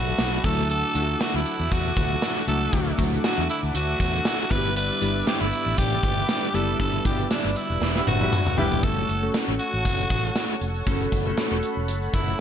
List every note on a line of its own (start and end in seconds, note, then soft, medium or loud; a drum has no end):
0.00 0.12 B1 medium
0.00 0.17 B2 medium
0.00 0.19 F#3 medium
0.00 0.44 F#3 medium
0.00 0.44 A3 medium
0.00 0.19 B3 medium
0.00 0.47 B3 medium
0.00 0.44 D4 medium
0.00 0.45 F#4 medium
0.00 0.46 F#4 loud
0.00 4.47 A4 medium
0.00 0.40 D5 medium
0.00 8.79 E5 medium
0.00 0.41 B5 medium
0.18 0.38 B1 medium
0.18 0.44 B2 medium
0.18 0.44 F#3 medium
0.18 0.43 B3 medium
0.18 snare loud
0.18 closed hi-hat loud
0.18 tambourine medium
0.44 0.82 D2 loud
0.44 1.71 D3 medium
0.44 0.86 F#3 medium
0.44 0.86 A3 medium
0.44 1.46 A3 medium
0.44 1.46 D4 medium
0.44 0.86 D4 medium
0.44 0.86 E4 medium
0.44 0.86 F#4 medium
0.44 0.70 A4 loud
0.44 4.47 F#5 medium
0.44 4.47 D6 medium
0.44 kick loud
0.44 open hi-hat medium
0.44 tambourine medium
0.70 1.23 A4 loud
0.70 closed hi-hat medium
0.70 tambourine soft
0.95 1.14 D2 loud
0.95 1.76 F#3 medium
0.95 1.76 A3 medium
0.95 1.76 D4 medium
0.95 1.77 E4 medium
0.95 1.02 F4 medium
0.95 closed hi-hat medium
0.95 tambourine medium
1.02 1.80 F#4 medium
1.20 1.37 F#4 loud
1.20 snare medium
1.20 closed hi-hat medium
1.20 tambourine medium
1.34 1.43 D2 medium
1.34 1.74 E4 loud
1.46 1.71 A3 soft
1.46 1.71 D4 medium
1.46 closed hi-hat medium
1.46 tambourine medium
1.60 1.68 E2 medium
1.60 tambourine soft
1.71 1.91 E2 loud
1.71 2.22 D3 medium
1.71 2.22 A3 medium
1.71 2.23 D4 medium
1.71 2.48 F#4 loud
1.71 kick loud
1.71 closed hi-hat loud
1.71 tambourine medium
1.86 tambourine soft
1.97 2.16 D2 medium
1.97 kick medium
1.97 closed hi-hat medium
1.97 tambourine medium
2.22 2.73 D3 medium
2.22 2.73 A3 medium
2.22 2.74 D4 medium
2.22 snare loud
2.22 closed hi-hat medium
2.22 tambourine medium
2.47 2.67 C#2 loud
2.47 2.68 F#3 medium
2.47 2.68 A3 medium
2.47 2.69 D4 medium
2.47 2.69 E4 medium
2.47 2.69 F#4 medium
2.47 2.95 A4 loud
2.47 closed hi-hat medium
2.47 tambourine medium
2.73 2.92 D2 loud
2.73 3.74 D3 medium
2.73 2.94 F#3 medium
2.73 2.94 A3 medium
2.73 3.49 A3 medium
2.73 2.94 D4 medium
2.73 3.48 D4 medium
2.73 2.94 E4 medium
2.73 2.94 F#4 medium
2.73 kick loud
2.73 closed hi-hat medium
2.73 tambourine soft
2.98 3.18 D2 loud
2.98 3.79 F#3 medium
2.98 3.79 A3 medium
2.98 3.80 D4 medium
2.98 3.80 E4 medium
2.98 3.80 F#4 medium
2.98 kick medium
2.98 closed hi-hat medium
2.98 tambourine medium
3.24 3.48 F#4 medium
3.24 snare loud
3.24 closed hi-hat medium
3.24 tambourine medium
3.38 3.46 E2 loud
3.49 3.74 A3 soft
3.49 3.75 D4 medium
3.49 3.61 E4 medium
3.49 closed hi-hat medium
3.49 tambourine medium
3.63 3.72 D2 medium
3.63 tambourine soft
3.74 3.94 D2 medium
3.74 4.25 D3 medium
3.74 4.25 A3 medium
3.74 4.26 D4 medium
3.74 4.53 F#4 loud
3.74 closed hi-hat loud
3.74 tambourine medium
4.00 4.19 E2 medium
4.00 kick loud
4.00 closed hi-hat medium
4.00 tambourine medium
4.14 tambourine soft
4.25 4.51 D3 medium
4.25 4.50 A3 medium
4.25 4.52 D4 medium
4.25 snare loud
4.25 closed hi-hat medium
4.25 tambourine medium
4.25 tambourine loud
4.50 4.89 G1 loud
4.50 5.76 G2 medium
4.50 5.77 D3 medium
4.50 4.92 G3 medium
4.50 5.78 G3 medium
4.50 4.92 B3 medium
4.50 4.93 D4 medium
4.50 4.93 E4 medium
4.50 4.58 F#4 medium
4.50 8.79 B4 medium
4.50 4.76 B4 loud
4.50 8.79 D5 medium
4.50 6.52 D6 medium
4.50 kick loud
4.50 closed hi-hat medium
4.50 tambourine medium
4.57 4.96 G4 medium
4.65 tambourine soft
4.76 5.29 B4 loud
4.76 closed hi-hat medium
4.76 tambourine soft
5.01 5.21 G1 medium
5.01 5.83 G3 medium
5.01 5.83 B3 medium
5.01 5.83 D4 medium
5.01 5.83 E4 medium
5.01 5.83 G4 medium
5.01 closed hi-hat medium
5.01 tambourine medium
5.27 5.43 G4 loud
5.27 snare medium
5.27 closed hi-hat medium
5.27 tambourine medium
5.41 5.50 G1 medium
5.41 5.79 E4 loud
5.53 closed hi-hat medium
5.53 tambourine medium
5.66 5.75 A1 medium
5.66 tambourine soft
5.78 5.97 A1 loud
5.78 6.27 G2 medium
5.78 6.28 D3 medium
5.78 6.29 G3 medium
5.78 6.56 G4 loud
5.78 kick medium
5.78 closed hi-hat loud
5.78 tambourine medium
6.03 6.22 G1 medium
6.03 kick medium
6.03 closed hi-hat medium
6.03 tambourine soft
6.17 tambourine soft
6.28 6.78 G2 medium
6.28 6.79 D3 medium
6.28 6.80 G3 medium
6.28 snare loud
6.28 closed hi-hat medium
6.28 tambourine loud
6.28 tambourine medium
6.54 6.73 F#1 loud
6.54 6.75 G3 medium
6.54 6.75 B3 medium
6.54 6.75 D4 medium
6.54 6.75 E4 medium
6.54 6.75 G4 medium
6.54 6.79 A4 medium
6.54 8.81 E6 medium
6.54 closed hi-hat medium
6.54 tambourine medium
6.79 6.99 G1 loud
6.79 7.56 G2 medium
6.79 7.56 D3 medium
6.79 7.00 G3 medium
6.79 7.54 G3 medium
6.79 7.00 B3 medium
6.79 7.00 D4 medium
6.79 7.01 E4 medium
6.79 7.01 G4 medium
6.79 7.04 A4 loud
6.79 kick loud
6.79 closed hi-hat medium
6.79 tambourine soft
7.04 7.24 G1 loud
7.04 7.86 G3 medium
7.04 7.86 B3 medium
7.04 7.86 D4 medium
7.04 7.87 E4 medium
7.04 7.12 F#4 medium
7.04 7.29 G4 medium
7.04 kick medium
7.04 closed hi-hat medium
7.04 tambourine medium
7.12 7.90 G4 medium
7.31 7.58 D4 medium
7.31 snare medium
7.31 closed hi-hat medium
7.31 tambourine medium
7.45 7.53 G1 medium
7.55 7.81 D3 soft
7.55 7.81 G3 medium
7.55 8.07 E4 medium
7.55 closed hi-hat medium
7.55 tambourine medium
7.70 7.79 E1 medium
7.70 tambourine soft
7.81 8.00 E1 medium
7.81 8.31 G2 medium
7.81 8.32 D3 medium
7.81 8.32 G3 medium
7.81 snare medium
7.81 tambourine medium
7.96 8.05 G3 medium
7.96 8.05 B3 medium
7.96 8.05 E4 medium
7.96 8.05 B4 medium
7.96 snare medium
8.07 8.26 G1 medium
8.07 8.59 F#4 medium
8.07 high tom medium
8.07 tambourine soft
8.21 8.31 G3 medium
8.21 8.31 B3 medium
8.21 8.31 E4 medium
8.21 8.31 B4 medium
8.21 high tom medium
8.21 tambourine soft
8.32 8.83 G2 medium
8.32 8.84 D3 medium
8.32 8.84 G3 medium
8.32 mid tom medium
8.32 tambourine loud
8.46 mid tom medium
8.57 8.77 F1 medium
8.57 8.78 G3 medium
8.57 8.74 G3 medium
8.57 8.78 B3 medium
8.57 8.74 B3 medium
8.57 8.79 D4 medium
8.57 8.74 E4 medium
8.57 8.79 E4 medium
8.57 8.85 G4 loud
8.57 8.79 G4 loud
8.57 8.74 B4 loud
8.57 floor tom loud
8.57 tambourine medium
8.72 floor tom loud
8.72 tambourine soft
8.83 9.02 F#1 loud
8.83 9.14 A3 medium
8.83 9.14 C#4 medium
8.83 9.14 F#4 medium
8.83 12.40 A4 medium
8.83 9.34 A4 loud
8.83 9.14 A4 medium
8.83 12.40 C#5 medium
8.83 12.40 F#5 medium
8.83 10.85 C#6 medium
8.83 kick loud
8.83 closed hi-hat medium
8.83 tambourine soft
9.09 9.28 F#1 loud
9.09 closed hi-hat medium
9.09 tambourine medium
9.22 9.42 A3 medium
9.22 9.42 C#4 medium
9.22 9.42 F#4 medium
9.22 9.43 A4 medium
9.34 snare medium
9.34 closed hi-hat medium
9.34 tambourine medium
9.48 9.57 A1 medium
9.48 10.28 A3 medium
9.48 10.28 C#4 medium
9.48 10.29 F#4 medium
9.48 10.29 A4 medium
9.59 10.57 F#4 loud
9.59 closed hi-hat medium
9.59 tambourine medium
9.73 9.82 A1 medium
9.73 tambourine soft
9.85 10.04 F#1 loud
9.85 kick medium
9.85 closed hi-hat loud
9.85 tambourine soft
9.99 tambourine soft
10.10 10.29 A1 medium
10.10 kick medium
10.10 closed hi-hat medium
10.10 tambourine soft
10.36 snare loud
10.36 closed hi-hat medium
10.36 tambourine loud
10.61 10.80 F1 medium
10.61 closed hi-hat medium
10.61 tambourine medium
10.75 tambourine soft
10.86 11.06 F#1 loud
10.86 11.17 A3 medium
10.86 11.17 C#4 medium
10.86 11.18 F#4 medium
10.86 11.18 A4 loud
10.86 12.40 B5 medium
10.86 kick loud
10.86 closed hi-hat medium
10.86 tambourine soft
11.12 11.31 F#1 loud
11.12 kick medium
11.12 closed hi-hat medium
11.12 tambourine medium
11.26 11.45 A3 medium
11.26 11.46 C#4 medium
11.26 11.46 F#4 medium
11.26 11.46 A4 loud
11.37 snare loud
11.37 closed hi-hat medium
11.37 tambourine medium
11.51 11.60 E1 medium
11.51 12.32 A3 medium
11.51 12.32 C#4 medium
11.51 12.32 F#4 medium
11.51 12.32 A4 medium
11.63 closed hi-hat medium
11.63 tambourine medium
11.77 11.88 E1 medium
11.88 12.07 F#1 loud
11.88 closed hi-hat loud
11.88 tambourine soft
12.02 tambourine soft
12.14 12.33 F#1 medium
12.14 12.40 E4 medium
12.14 kick medium
12.14 closed hi-hat medium
12.14 tambourine soft